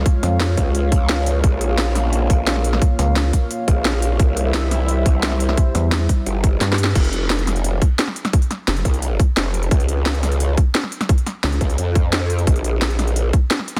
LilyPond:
<<
  \new Staff \with { instrumentName = "Analog synth pad" } { \time 4/4 \key f \minor \tempo 4 = 174 << { <f' des'' f''>1~ | <f' des'' f''>1~ | <f' des'' f''>1 | <e' c'' e''>1~ |
<e' c'' e''>1 | r1 | r1 | r1 |
r1 | r1 | } \\ { aes1 | bes1~ | bes1 | g1~ |
g1 | r1 | r1 | r1 |
r1 | r1 | } >> }
  \new Staff \with { instrumentName = "Wobble bass" } { \clef bass \time 4/4 \key f \minor r8 f,4 r2 r8 | r1 | r8 des,4 r2 r8 | r1 |
r8 e,4 r4. g,4 | r1 | r4 f,,8 r2 r8 | r1 |
r4 des,8 r2 r8 | r1 | }
  \new Staff \with { instrumentName = "Wobble bass" } { \clef bass \time 4/4 \key f \minor r4. des,4. des,4 | bes,,2~ bes,,8 bes,,4. | r2 r8 bes,,4. | c,2~ c,8 c,4. |
r2 g,,4 r4 | f,,2~ f,,8 r4. | r4. c,4 r8 f,,4 | des,2~ des,8 r4. |
r4. des,8 f,2 | bes,,2~ bes,,8 r4. | }
  \new DrumStaff \with { instrumentName = "Drums" } \drummode { \time 4/4 <hh bd>8 <hh sn>8 <hh sn>8 <hh bd>8 hh8 <hh bd>8 <hh sn>8 hh8 | <hh bd>8 hh8 <hh sn>8 <hh sn>8 hh8 <hh bd>8 <hh sn>16 sn16 hh16 sn16 | <hh bd>8 <hh sn>8 <hh sn>8 <hh bd>8 hh8 <hh bd>8 <hh sn>8 hh8 | <hh bd>8 hh8 <hh sn>8 <hh sn>8 hh8 <hh bd>8 <hh sn>16 sn16 hh16 sn16 |
<hh bd>8 <hh sn>8 <hh sn>8 <hh bd>8 hh8 <hh bd>8 \tuplet 3/2 { <hh sn>16 r16 sn16 hh16 sn16 r16 } | <cymc hh bd>16 hh16 hh8 <hh sn>16 hh16 <hh sn>16 hh16 hh8 <hh bd>8 <hh sn>16 sn16 hh16 <hh sn>16 | <hh bd>16 hh16 <hh sn>8 <hh sn>16 hh16 <hh bd>16 hh16 hh8 <hh bd>8 <hh sn>8 hh16 hh16 | <hh bd>16 hh16 hh8 <hh sn>16 hh16 <hh sn>16 hh16 hh8 <hh bd>8 <hh sn>16 sn16 hh16 <hh sn>16 |
<hh bd>16 hh16 <hh sn>8 <hh sn>16 hh16 <hh bd>16 hh16 hh8 <hh bd>8 <hh sn>8 hh16 hh16 | <hh bd>16 hh16 hh8 <hh sn>16 hh16 <hh sn>16 hh16 hh8 <hh bd>8 <hh sn>16 sn16 hh16 <hh sn>16 | }
>>